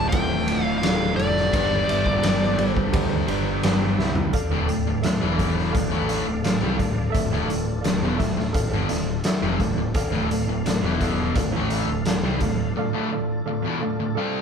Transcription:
Already playing: D2 A2 D3 D4 F4 A4 D5
0.09 F4 G5, ride
0.13 D1 A4 F5, kick
0.46 D2 A2 D3 F4, ride
0.50 A4 D5
0.64 F5
0.78 D2 F4 F5
0.83 D1 A2 D3 A4 D5, snare, ride
1.16 F1 F4 A4 D5, ride
1.37 snare
1.49 G1 G2 D3 D4 G4 B4 D5, kick, ride
1.54 G3 D5
1.87 G1 G4 B4 E5, ride
2.06 kick
2.23 G1 G4 B4 D5, snare, ride
2.43 snare
2.57 G1 G4 B4 D5, ride
2.72 C5
2.77 kick
2.92 D2 G4 B4 D5, kick, ride
3.27 G1 G2 D3 G3 G4 B4 D5, ride
3.62 G1 G2 D3 G4 B4 D5, snare, ride
3.67 G3
3.98 C2 G4 B4 E5, snare
4.15 floor tom
4.33 D4 A4 D5 F5, kick, closed hi-hat
4.51 D1 D2 A2
4.67 D1 D2 A2 A4 D5 G5, closed hi-hat
4.87 D1 D2 A2
5.01 D1 D2 A4 D5 E5, snare, closed hi-hat
5.06 A2
5.22 E1 E2 B2 E3
5.36 A4 D5 F5, kick, closed hi-hat
5.59 snare
5.71 D1 D2 A4 D5 F5, kick, closed hi-hat
5.76 A2
5.92 A1 A2 E3 A3
6.07 A4 D5 F5, closed hi-hat
6.27 D1 D2 A2
6.42 D1 D2 A2 A4 D5 F5, snare, closed hi-hat
6.62 C2 C3 G3
6.76 D1 A4 D5 F5, kick, closed hi-hat
6.80 D2 A2
7.10 A4 D5 E5
7.14 D1 D2 A2 D4 F4 A4, kick, closed hi-hat
7.31 D1 D2 A2
7.45 D2 A2 A4 D5 F5
7.49 D1, closed hi-hat
7.81 D1 D2 A4 D5 F5, closed hi-hat
7.85 A2, snare
8.01 E1 E2 B2
8.17 D1 D2 A4 D5 E5, kick, closed hi-hat
8.21 A2, snare
8.37 D1 D2 A2, snare
8.53 A4 D5 F5, kick, closed hi-hat
8.71 G1 G2 D3
8.88 D1 D2 A2 A4 D5 F5, snare, closed hi-hat
9.24 A4 D5 E5, snare, closed hi-hat
9.42 F1 F2 C3
9.59 D1 D2 A2 A4 D5 F5, kick, closed hi-hat
9.76 D1 D2 A2
9.94 D4 A4 D5 F5, kick, closed hi-hat
10.12 D1 D2 A2
10.29 D1 D2 A2 A4 D5, closed hi-hat
10.33 F5
10.47 D1 D2 A2
10.64 D1 D2 A2 A4 D5 F5, snare, closed hi-hat
10.81 E1 E2 B2 E3
11.01 A4 D5 F5, kick, snare, closed hi-hat
11.34 D1 D2 A2 A4 D5 F5, kick, closed hi-hat
11.40 A2
11.51 A1 A2 E3 A3
11.56 A2 A3
11.70 A4 D5 F5, closed hi-hat
11.87 D1 D2 A2
12.05 D1 D2 A2 A4 D5 F5, snare, closed hi-hat
12.22 C2 C3 G3
12.40 D1 D2 A2 A4 D5 F5, kick, closed hi-hat
12.77 D2 A2 D4 F4 A4 D5 F5
12.94 D2 A2
13.11 D2 A2 A4 D5 F5
13.46 D2 A2 A4 D5 F5
13.62 E2 B2
13.81 D2 A2 A4 D5 F5
13.99 D2 A2
14.15 C3 G3 C4 A4 D5 F5

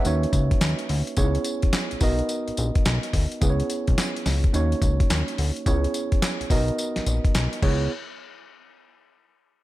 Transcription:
Already playing: B4 E5
0.05 D#2 A#3 C#4 D#4 F#4 C#5, closed hi-hat, tambourine
0.23 closed hi-hat
0.33 C#2, kick, closed hi-hat, tambourine
0.51 kick, closed hi-hat
0.61 D#2, snare, clap, closed hi-hat, tambourine
0.79 closed hi-hat
0.89 D2, open hi-hat
1.07 closed hi-hat
1.17 C#2 B3 C#4 D#4 G#4 C#5, kick, closed hi-hat, tambourine
1.24 E4
1.35 closed hi-hat
1.44 closed hi-hat, tambourine
1.62 B1, kick, closed hi-hat
1.73 snare, clap, closed hi-hat, tambourine
1.91 B1, closed hi-hat
2.01 B1 B3 D#4 F#4 A#4 D#5, kick, open hi-hat, tambourine
2.19 closed hi-hat
2.29 closed hi-hat, tambourine
2.48 A#1, closed hi-hat
2.57 A#1, closed hi-hat, tambourine
2.75 kick, closed hi-hat
2.85 B1, snare, clap, closed hi-hat, tambourine
3.03 closed hi-hat
3.13 D2, kick, open hi-hat
3.32 closed hi-hat
3.41 C#2 B3 C#4 E4 G#4 B4, kick, closed hi-hat, tambourine
3.50 C#5
3.60 closed hi-hat
3.70 closed hi-hat, tambourine
3.87 B1, kick, closed hi-hat
3.98 snare, clap, closed hi-hat, tambourine
4.16 closed hi-hat
4.26 C#2, snare, open hi-hat, tambourine
4.44 kick, closed hi-hat
4.53 D#2 A#3 C#4 D#4 F#4 C#5, closed hi-hat, tambourine
4.72 closed hi-hat
4.82 C#2, kick, closed hi-hat, tambourine
5.00 kick, closed hi-hat
5.10 D#2, snare, clap, closed hi-hat, tambourine
5.28 closed hi-hat
5.38 D2, open hi-hat
5.56 closed hi-hat
5.66 C#2 B3 C#4 E4 G#4 C#5, kick, closed hi-hat, tambourine
5.84 closed hi-hat
5.94 closed hi-hat, tambourine
6.12 B1, kick, closed hi-hat
6.22 snare, clap, closed hi-hat, tambourine
6.41 B1, closed hi-hat
6.50 B1 B3 D#4 F#4 A#4 D#5, kick, open hi-hat, tambourine
6.68 closed hi-hat
6.78 closed hi-hat, tambourine
6.96 A#1, snare, closed hi-hat
7.06 A#1, closed hi-hat, tambourine
7.25 kick, closed hi-hat
7.35 B1, snare, clap, closed hi-hat, tambourine
7.53 closed hi-hat
7.62 C#2 B3 E4 G#4 C#5, kick, crash

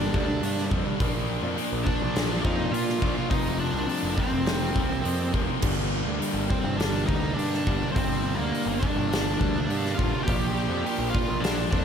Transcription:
Already playing: G2 D3 G3 D4 D5
0.00 G3 A#3
0.13 D2 G2 D3 G3 A#3 D4, kick
0.27 A#3 D4, muted distorted electric guitar stroke
0.32 G3
0.42 G2 D3 G3 A#3 D4, open hi-hat
0.58 snare
0.70 F2 G2 D3 G3 A#3 D4, kick
0.86 G3 A#3 D4
1.00 A#1 A#2 F3 A#3 D4, kick, open hi-hat
1.14 F3 A#3 D4
1.27 A#2 F3 A#3
1.42 F2 F3 A#3 D4
1.57 A#2 F3 A#3 D4, open hi-hat
1.73 A#1
1.84 A#2 F3 A#3 D4 D5, kick
1.99 A#1 A#3 D4, muted distorted electric guitar stroke
2.04 F3
2.13 A#2 F3 A#3 D4, snare, open hi-hat
2.30 F3 A#3 D4
2.44 F2 A#2 F3 A#3 D4 D#4 D#5, kick
2.58 F3 A#3 D4, muted distorted electric guitar stroke
2.72 A#2 F3 A#3 D4 F4 F5, open hi-hat
2.89 snare
3.01 A#1 A#2 F3 A#3 D4, kick
3.16 F3 A#3 D4
3.30 F1 F2 C3 F3 A#3 C4 D#4 D#5, kick, open hi-hat
3.44 F3 A#3 C4
3.58 F2 C3 F3 D4 D5
3.73 C2 F3 A#3 C4
3.87 F2 C3 F3 A#3 C4, open hi-hat
4.03 F1
4.17 F2 C3 F3 A#3 C4 C5, kick
4.32 F1 F3 A#3 C4, muted distorted electric guitar stroke
4.45 F2 C3 F3 A#3 C4, snare, open hi-hat
4.60 F3 A#3 C4
4.74 C2 F2 C3 F3 A#3, kick
4.79 C4
4.89 F3 A#3 C4, muted distorted electric guitar stroke
5.03 F2 C3 F3 A#3 C4, open hi-hat
5.32 F1 F2 C3 F3 A#3 C4, kick
5.47 F3 A#3 C4
5.61 G1 G2 D3 G3 A#3 D4, kick, crash
5.75 G3 A#3 D4
5.90 G2 D3 G3
6.03 D2 G3 A#3 D4
6.18 G2 D3 G3 A#3 D4, open hi-hat
6.34 G1
6.46 G2 D3 G3 A#3 C4 D4 C5, kick
6.61 G1 G3 A#3 D4, muted distorted electric guitar stroke
6.77 G2 D3 G3 A#3 D4 D5, open hi-hat
6.81 snare
6.91 G3 A#3 D4
7.06 D2 G2 D3 G3 A#3 D4 D#4 D#5, kick
7.20 G3 A#3 D4, muted distorted electric guitar stroke
7.34 G2 D3 G3 A#3 D4 D5
7.38 D4, open hi-hat
7.54 snare
7.64 G1 G2 D3 G3 A#3 D4, kick
7.79 G3 A#3 D4
7.92 G2 D3 G3 A#3 C4 C5
7.96 G1 D4, kick, open hi-hat
8.08 G3 A#3 D4
8.23 G2 D3 G3
8.35 D2 A#3 D4 A#4
8.39 G3
8.51 G2 D3 G3 A#3 D4, open hi-hat
8.66 G1
8.79 G2 D3 G3 A#3 D4 D5, kick
8.95 G1 G3 A#3 D4, muted distorted electric guitar stroke
9.10 G2 D3 G3 A#3 D4, snare, open hi-hat
9.24 G3 A#3 D4
9.38 D2 G2 D3 G3 A#3 D4, kick
9.53 G3 A#3 D4, muted distorted electric guitar stroke
9.67 G2 D3 G3 A#3 D4, open hi-hat
9.86 snare
9.95 G2 D3 G3 A#3 F4 F5
9.99 A1 D4, kick
10.10 G3 A#3 D4
10.23 A#2 F3 A#3 G4 G5
10.28 A#1 D4, kick, open hi-hat
10.39 F3 A#3 D4
10.54 A#2 F3 A#3
10.68 F2 F3 A#3 D4
10.85 A#2 F3 A#3 D4, open hi-hat
10.98 A#1
11.10 A#2 F3 A#3 F4 F5
11.15 D4, kick
11.26 A#1 F3 A#3 D4, muted distorted electric guitar stroke
11.40 A#2 F3 A#3 D4 D5, open hi-hat
11.45 D4, snare
11.55 F3 A#3 D4
11.69 F2 A#2 F3 A#3 D4 D5, kick
11.73 D4

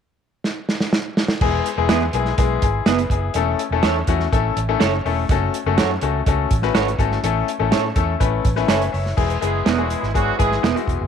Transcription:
0.44 snare
0.69 snare
0.80 snare
0.93 snare
1.17 snare
1.28 snare
1.41 E1 G#3 B3 E4 G#4, kick, crash
1.66 closed hi-hat
1.77 E1 G#3 B3 E4 G#4
1.89 E2 B3 E4 G#4, snare, closed hi-hat
2.13 B1 G#3 B3 E4 G#4, closed hi-hat
2.25 snare
2.38 B1 G#3 B3 E4 G#4, kick, closed hi-hat
2.62 G#1 E4 G#4, kick, closed hi-hat
2.86 F#1 B3 E4 G#4 B4, snare, closed hi-hat
2.99 closed hi-hat
3.10 F#1 E4 G#4, kick, closed hi-hat
3.34 E1 A3 C#4 E4 A4, closed hi-hat
3.59 closed hi-hat
3.71 E1 A3 C#4 E4 A4
3.83 E2 E4 A4 C#5, snare, closed hi-hat
4.07 E2 A3 C#4 E4 F#4, kick, closed hi-hat
4.20 snare
4.32 A1 A3 C#4 E4 A4, kick, closed hi-hat
4.56 A1, closed hi-hat
4.69 A3 C#4 E4 A4
4.80 F#1 E4 A4 C#5, snare, closed hi-hat
5.05 E1 A3 C#4 E4 A4, open hi-hat
5.29 F#1 A3 C#4 F#4 A4, kick, closed hi-hat
5.54 closed hi-hat
5.66 F#1 A3 C#4 F#4 A4
5.78 F#2 F#4 A4 C#5, snare, closed hi-hat
6.01 C#2 A3 C#4 F#4 A4, closed hi-hat
6.26 C#2 A3 C#4 F#4 A4, kick, closed hi-hat
6.51 A1, kick, closed hi-hat
6.62 A3 C#4 F#4 B4, snare
6.75 G#1 F#4 A4 C#5, snare, closed hi-hat
6.88 closed hi-hat
6.99 G#1 A3 C#4 F#4 A4, kick, closed hi-hat
7.12 snare
7.23 A1 A3 C#4 E4 A4, closed hi-hat
7.48 closed hi-hat
7.59 A1 A3 C#4 E4 A4
7.72 A2 E4 A4 C#5, snare, closed hi-hat
7.96 E2 A3 C#4 E4 A4, kick, closed hi-hat
8.20 A1 A3 C#4 E4 B4, kick, closed hi-hat
8.45 A1, kick, closed hi-hat
8.56 A3 C#4 E4 B4, snare
8.68 F#1 E4 A4 C#5 E5 G#5, snare, closed hi-hat
8.82 closed hi-hat
8.92 F#1 C#5 E5, open hi-hat
9.06 snare
9.17 E1 G#3 B3 E4 G#4, kick, crash
9.30 closed hi-hat
9.41 F#1 E3 G#3 B3 E4 G#4, closed hi-hat
9.66 E1 F#3 B3 D4 E4 F#4 G#4, snare, closed hi-hat
9.78 G#3 B3 E4 G#4
9.90 B2 E3 G#3 E4, closed hi-hat
10.03 G#1, snare
10.14 F#3 G#3 B3 D4 E4 F#4 G#4, kick, closed hi-hat
10.38 G#1 E3 G#3 B3 E4 G#4, kick, closed hi-hat
10.52 snare
10.63 E1 B3 E4 G#4, snare, closed hi-hat
10.75 G#3 B3 E4 F#4, closed hi-hat
10.88 E1, kick, closed hi-hat
11.01 F#1

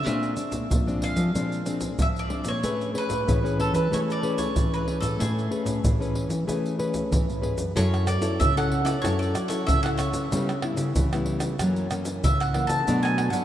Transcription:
Already playing: E5
0.06 A#2 G#3 C4 D4, pandeiro, shaker, surdo
0.23 pandeiro, shaker
0.37 G#3 C4 D4, pandeiro, shaker
0.51 A#2, pandeiro, shaker, surdo
0.70 A#2 F3, pandeiro, shaker, surdo
0.87 G#3 C4 D4, pandeiro, shaker
1.02 F5, pandeiro
1.16 F3, pandeiro, shaker, surdo
1.34 A#2 F3 G#3 C4 D4, pandeiro, shaker, surdo
1.52 pandeiro, shaker
1.65 G#3 C4 D4, pandeiro, shaker
1.81 pandeiro, shaker, surdo
1.99 F3 E5, pandeiro, shaker, surdo
2.16 D5, pandeiro, shaker
2.30 G#3 C4 D4, pandeiro
2.44 A#2 C#5, pandeiro, shaker, surdo
2.63 A2 A3 C#4 G#4 B4, pandeiro, shaker, surdo
2.81 pandeiro, shaker
2.94 C#4 G#4 B4, pandeiro
2.98 B4
3.09 A2, pandeiro, shaker, surdo
3.27 A2 E3 C#4 G#4 B4, pandeiro, shaker, surdo
3.44 C#4 G#4 B4, pandeiro, shaker
3.60 A4, pandeiro, surdo
3.73 E3 B4, pandeiro, shaker, surdo
3.91 E3 A3 C#4 G#4 B4 C#5, pandeiro, shaker, surdo
4.10 D5, pandeiro, shaker
4.23 C#4 G#4 B4, pandeiro
4.38 C#5, pandeiro, shaker, surdo
4.56 E3, pandeiro, shaker, surdo
4.74 B4, pandeiro, shaker
4.87 C#4 G#4 B4, pandeiro
5.00 A2 A4, pandeiro, shaker, surdo
5.19 A2 A3 G#4, pandeiro, shaker, surdo
5.39 pandeiro, shaker
5.51 C#4 G#4 B4, pandeiro
5.64 A2, pandeiro, shaker, surdo
5.83 A2 E3, pandeiro, shaker, surdo
6.00 C#4 G#4 B4, pandeiro, shaker
6.15 pandeiro, surdo
6.29 E3, pandeiro, shaker, surdo
6.47 E3 A3 C#4 G#4 B4, pandeiro, shaker, surdo
6.66 pandeiro, shaker
6.79 C#4 G#4 B4, pandeiro
6.94 pandeiro, shaker, surdo
7.11 E3, pandeiro, shaker, surdo
7.29 A2, pandeiro, shaker
7.41 G#2 C#4 G#4 B4, pandeiro
7.57 F#2, pandeiro, shaker, surdo
7.76 F#2 F#3 C#4 E4 A4 C#5, pandeiro, shaker, surdo
7.94 pandeiro, tamborim, shaker
8.07 D5, pandeiro, tamborim, shaker
8.21 F#2 C#4 E4 A4, pandeiro, shaker
8.40 C#3 E5, pandeiro, shaker, surdo
8.57 C#4 E4 A4 F#5, pandeiro, tamborim, shaker
8.72 pandeiro
8.84 C#4 E4 A4 D5, pandeiro, tamborim, shaker
9.02 F#2 F#3 C#4 E4 A4 C#5, pandeiro, tamborim, shaker, surdo
9.19 D5, pandeiro, shaker
9.35 pandeiro, tamborim, shaker
9.48 C#4 E4 A4 C#5, pandeiro, shaker
9.67 C#3 E5, pandeiro, shaker, surdo
9.83 C#4 E4 A4 F#5, pandeiro, tamborim, shaker
9.97 C#5, pandeiro, tamborim, shaker
10.13 C#3, pandeiro, shaker
10.32 C#3 G3 B3 E4, pandeiro, shaker, surdo
10.49 pandeiro, tamborim, shaker
10.62 G3 B3 E4, pandeiro, tamborim
10.77 C#3, pandeiro, shaker
10.95 C#3 E3, pandeiro, shaker, surdo
11.13 G3 B3 E4, pandeiro, tamborim, shaker
11.26 pandeiro
11.40 pandeiro, tamborim, shaker
11.59 F#2 E3 F#3 A#3 C#4, pandeiro, tamborim, shaker, surdo
11.76 pandeiro, shaker
11.91 E3 A#3 C#4, pandeiro, tamborim, shaker
12.05 pandeiro, shaker
12.24 C#3 E5, pandeiro, shaker, surdo
12.40 F#5, pandeiro, tamborim, shaker
12.54 E3 A#3 C#4, pandeiro, tamborim
12.67 C#3 A5, pandeiro, shaker
12.87 B2 F#3 A3 D4, pandeiro, shaker, surdo
13.03 G#5, pandeiro, tamborim, shaker
13.18 pandeiro, tamborim
13.30 B2 F#3 A3 D4 F#5, pandeiro, shaker

